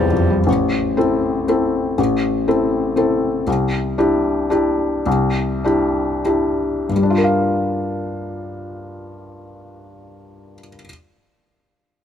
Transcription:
0.00 0.44 A#1 soft
0.00 0.13 E2 soft
0.00 0.13 F2 soft
0.00 0.27 F3 medium
0.00 0.27 G3 medium
0.00 0.30 G3 soft
0.13 0.40 F2 soft
0.30 0.47 G3 soft
0.47 0.96 A1 soft
0.97 1.43 C4 soft
0.97 1.43 E4 soft
0.97 1.44 A4 soft
1.48 1.94 C4 soft
1.48 1.94 E4 soft
1.48 1.95 A4 soft
1.98 2.46 A1 soft
2.48 2.93 C4 soft
2.48 2.93 E4 soft
2.48 2.93 A4 soft
2.96 3.43 C4 soft
2.96 3.43 E4 soft
2.96 3.43 A4 soft
3.47 3.97 C2 soft
3.98 4.47 D4 soft
3.98 4.47 E4 soft
3.98 4.47 G4 soft
4.50 5.01 D4 soft
4.50 5.02 E4 soft
4.50 5.02 G4 soft
5.06 5.62 C2 medium
5.64 6.21 D4 soft
5.64 6.21 E4 soft
5.64 6.22 G4 soft
6.25 6.86 D4 soft
6.25 6.86 E4 soft
6.25 6.86 G4 soft
6.89 10.53 G2 soft
6.96 10.60 G3 soft
7.03 10.67 D4 soft
7.10 10.74 F4 soft
7.17 10.81 A#4 soft
7.24 10.88 F5 soft

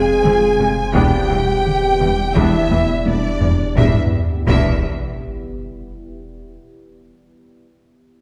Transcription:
0.00 0.96 F1 medium
0.00 0.94 C4 medium
0.00 0.94 F4 medium
0.00 0.77 G#4 loud
0.00 0.94 G#4 medium
0.00 0.94 C5 medium
0.00 0.91 G#5 loud
0.00 0.92 G#5 loud
0.24 0.33 F1 medium
0.24 0.32 F2 medium
0.24 0.33 F3 loud
0.24 0.45 G#3 medium
0.24 0.33 C4 loud
0.24 taiko mid medium
0.59 0.67 F1 medium
0.59 0.67 F2 medium
0.59 0.69 C3 medium
0.59 0.69 G#3 loud
0.59 0.81 C4 medium
0.93 3.77 E1 medium
0.93 1.03 E1 loud
0.93 1.02 E2 loud
0.93 1.15 E3 loud
0.93 3.75 B3 loud
0.93 1.28 B3 loud
0.93 1.28 D4 loud
0.93 3.75 E4 loud
0.93 3.75 G4 medium
0.93 2.33 G4 loud
0.93 3.76 D5 loud
0.93 2.33 G5 loud
0.93 2.36 G5 loud
0.93 taiko loud
1.29 1.39 E1 medium
1.29 1.37 E2 medium
1.29 1.39 E3 medium
1.29 1.51 G3 medium
1.29 1.38 G3 medium
1.66 taiko mid medium
2.00 2.09 E1 medium
2.00 2.08 E2 medium
2.00 2.09 E3 medium
2.00 2.22 G3 medium
2.00 2.09 G3 medium
2.00 taiko mid medium
2.35 2.44 E1 loud
2.35 2.44 E2 loud
2.35 2.57 E3 loud
2.35 2.69 B3 loud
2.35 2.69 D4 loud
2.35 3.05 E4 loud
2.35 3.06 E5 loud
2.35 3.05 E5 loud
2.35 taiko loud
2.71 2.80 E1 medium
2.71 2.79 E2 medium
2.71 2.79 E3 medium
2.71 2.79 G3 medium
2.71 2.92 B3 medium
2.71 taiko high medium
3.06 3.15 E1 medium
3.06 3.14 E2 medium
3.06 3.28 G3 medium
3.06 3.14 G3 medium
3.06 3.15 B3 medium
3.06 3.76 D4 loud
3.06 3.77 D5 loud
3.06 3.78 D5 loud
3.06 taiko high loud
3.41 3.50 E1 medium
3.41 3.50 E2 medium
3.41 3.49 E3 medium
3.41 3.49 G3 medium
3.41 3.63 B3 medium
3.41 taiko low loud
3.76 3.96 E1 loud
3.76 3.97 E1 loud
3.76 3.97 E2 loud
3.76 3.97 G3 loud
3.76 3.97 D4 loud
3.76 4.09 E4 loud
3.76 3.97 E5 loud
3.76 taiko loud
3.76 sub drop loud
4.47 4.87 E1 loud
4.47 4.87 E2 loud
4.47 4.87 G3 medium
4.47 4.87 D4 medium
4.47 4.87 E5 loud
4.47 taiko loud

